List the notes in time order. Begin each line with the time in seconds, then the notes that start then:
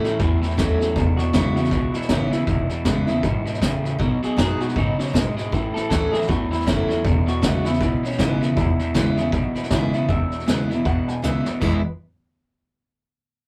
Already playing: A2 A3
0.04 A2 F#3 C#4 E4, snare
0.19 E2 A2 E3, kick, snare
0.42 A2 E3, muted upright bass stroke, snare
0.50 snare
0.57 D#2 A2 E3 F#3 A3 C#4 E4, kick, snare, hi-hat pedal
0.79 A2 F#3 C#4 E4, muted upright bass stroke, snare
0.96 E1 E2 B2, kick, snare
1.17 E2 B2 F#4, snare
1.33 B1 E2 C#3 E3 G#3 B3 E4, kick, snare, hi-hat pedal
1.55 E2 C#3 B3 E4 F#4, snare
1.64 snare
1.71 C#2 E2 B2, kick, snare
1.92 E2 B2 E4, muted upright bass stroke, snare
2.02 snare
2.09 G#1 E2 C#3 E3 G#3 B3 C#4 E4, kick, snare, hi-hat pedal
2.31 E2 C#3 B3 E4, muted upright bass stroke, snare
2.47 E1 E2 B2, kick, snare
2.69 E2 B2, muted upright bass stroke, snare
2.85 A1 E2 C#3 E3 G#3 B3 E4, kick, snare, hi-hat pedal
3.07 E2 C#3 B3 E4, snare
3.23 B1 E2 G#2 B2, kick, snare
3.45 E2 B2, muted upright bass stroke, snare
3.54 snare
3.61 A1 E2 A2 C#3, kick, snare, hi-hat pedal
3.83 E2 C#3, muted upright bass stroke, snare
3.99 B1 B2 F#3, kick, snare
4.22 B2 F#3 G#4, muted upright bass stroke, snare
4.37 F#2 B2 F#3 G#3 B3 D#4 F#4 G#4, kick, snare, hi-hat pedal
4.60 B2 G#3 F#4, muted upright bass stroke, snare
4.68 snare
4.75 G#2 B2 C#3 F#3 D#4, kick, snare
4.98 B2 F#3 C#4, muted upright bass stroke, snare
5.07 snare
5.13 B1 G#2 B2 G#3, kick, snare, hi-hat pedal
5.35 B2 G#3, muted upright bass stroke, snare
5.52 A1 A2 E3, kick, snare
5.74 A2 E3 A4, muted upright bass stroke, snare
5.89 D2 A2 E3 F#3 A3 C#4 E4 A4, kick, snare, hi-hat pedal
6.12 A2 F#3 C#4 E4 G#4, snare
6.21 snare
6.28 E2 A2 E3 F#4, kick, snare
6.50 A2 E3 E4, muted upright bass stroke, snare
6.60 snare
6.66 F#1 A2 E3 F#3 A3 C#4 E4, kick, snare, hi-hat pedal
6.88 A2 F#3 C#4 E4, muted upright bass stroke, snare
7.04 E1 E2 B2, kick, snare
7.26 E2 B2 F#4, muted upright bass stroke, snare
7.42 B1 E2 C#3 E3 G#3 B3 E4 F#4, kick, snare, hi-hat pedal
7.64 E2 C#3 B3 E4, muted upright bass stroke, snare
7.74 snare
7.80 C#2 E2 B2 E4, kick, snare
8.02 E2 B2 C#4, muted upright bass stroke, snare
8.11 snare
8.18 G#1 E2 C#3 E3 G#3 B3 E4, kick, snare, hi-hat pedal
8.41 E2 C#3 B3 E4, muted upright bass stroke, snare
8.56 E1 E2 B2 E4, kick, snare
8.79 E2 B2, muted upright bass stroke, snare
8.94 A1 E2 C#3 E3 G#3 B3 E4, kick, snare, hi-hat pedal
9.17 E2 C#3 B3 E4, snare
9.32 B1 E2 B2, kick, snare
9.54 E2 B2, muted upright bass stroke, snare
9.63 snare
9.70 G#1 E2 C#3 E3 G#3 B3 E4, kick, snare, hi-hat pedal
9.92 E2 C#3 B3 E4, muted upright bass stroke, snare
10.09 E1 E2 B2 E5, kick, snare
10.30 muted upright bass stroke, snare
10.40 snare
10.46 B1 E2 C#3 E3 G#3 B3 E4, snare, hi-hat pedal
10.69 E2 B2 B3 E4, snare
10.85 E2 B2 F#5, kick, snare
11.08 G#5, muted upright bass stroke, snare
11.22 C#2 E2 C#3 E3 G#3 B3 E4 E5, snare, hi-hat pedal
11.45 E2 B2 B3 E4, muted upright bass stroke, snare
11.61 E1 E2 B2 E3 G#3 B3 E4 B4, kick, crash